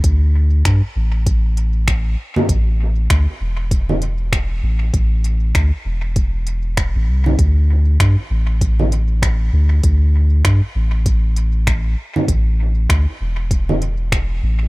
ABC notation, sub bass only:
X:1
M:4/4
L:1/16
Q:"Swing 16ths" 1/4=98
K:Am
V:1 name="Sub bass" clef=bass
D,,4 G,, z A,,,8 z2 | A,,,4 D,, z E,,,8 A,,,2 | A,,,4 D,, z E,,,6- E,,, A,,, C,,2 | D,,4 G,, z A,,,8 D,,2 |
D,,4 G,, z A,,,8 z2 | A,,,4 D,, z E,,,8 A,,,2 |]